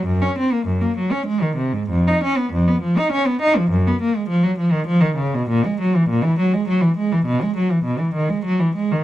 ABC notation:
X:1
M:3/4
L:1/16
Q:1/4=101
K:F#
V:1 name="Cello" clef=bass
F,, C ^B, A, F,, A, F, C G, D, ^B,, G,, | E,, D C B, E,, B, E, D C B, D E, | F,, B, A, G, E, F, E, D, E, D, C, B,, | [K:B] A,, G, F, E, A,, E, F, G, F, E, G, E, |
B,, G, F, E, B,, E, D, G, F, E, G, D, |]